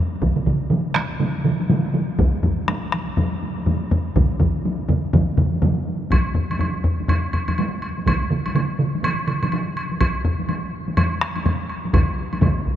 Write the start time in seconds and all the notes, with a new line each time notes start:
0.12 taiko high
0.22 taiko, taiko mid, taiko high
0.36 taiko mid, taiko high
0.46 taiko, taiko mid, taiko high
0.62 taiko high
0.70 taiko mid, taiko high
0.86 taiko high
0.95 taiko rim, taiko high
1.11 taiko high
1.20 taiko mid, taiko high
1.35 taiko high
1.45 taiko mid, taiko high
1.60 taiko high
1.69 taiko mid, taiko high
1.84 taiko high
1.94 taiko mid, taiko high
2.09 taiko high
2.19 taiko, taiko low-mid, taiko high
2.34 taiko high
2.43 taiko, taiko low-mid, taiko high
2.59 taiko high
2.68 taiko rim, taiko high
2.83 taiko high
2.92 taiko rim, taiko high
3.09 taiko high
3.17 taiko low-mid, taiko high
3.33 taiko high
3.43 taiko high
3.57 taiko high
3.66 taiko low-mid, taiko high
3.82 taiko high
3.91 taiko low-mid, taiko high
4.06 taiko high
4.16 taiko, taiko low-mid, taiko mid, taiko high
4.31 taiko high
4.40 taiko, taiko low-mid, taiko mid, taiko high
4.56 taiko high
4.66 taiko high
4.81 taiko high
4.89 taiko low-mid, taiko mid, taiko high
5.06 taiko high
5.13 taiko, taiko low-mid, taiko mid, taiko high
5.30 taiko high
5.37 taiko low-mid, taiko mid, taiko high
5.54 taiko high
5.62 taiko low-mid, taiko mid, taiko high
5.79 taiko high
5.88 taiko high
6.02 taiko high
6.10 taiko, taiko low-mid, taiko high, high woodblock
6.35 taiko low-mid
6.51 taiko high, high woodblock
6.59 taiko low-mid, taiko high, high woodblock
6.84 taiko low-mid
7.00 taiko high
7.08 taiko low-mid, taiko high, high woodblock
7.33 taiko low-mid, high woodblock
7.48 taiko low-mid, taiko high, high woodblock
7.58 taiko high, high woodblock
7.82 high woodblock
7.98 taiko high
8.06 taiko, taiko mid, taiko high, high woodblock
8.31 taiko mid
8.46 taiko high, high woodblock
8.55 taiko mid, taiko high, high woodblock
8.79 taiko mid
8.95 taiko high
9.03 taiko mid, taiko high, high woodblock
9.27 taiko mid, high woodblock
9.43 taiko mid, taiko high, high woodblock
9.52 taiko high, high woodblock
9.77 high woodblock
9.91 taiko high
10.00 taiko, taiko high, high woodblock
10.25 taiko low-mid
10.40 taiko high
10.49 taiko high, high woodblock
10.88 taiko high
10.97 taiko low-mid, taiko high, high woodblock
11.21 taiko rim, high woodblock
11.36 taiko high, high woodblock
11.46 taiko low-mid, taiko high, high woodblock
11.69 high woodblock
11.85 taiko high
11.93 taiko, taiko low-mid, taiko mid, taiko high, high woodblock
12.33 taiko high, high woodblock
12.42 taiko, taiko low-mid, taiko mid, taiko high, high woodblock
12.66 taiko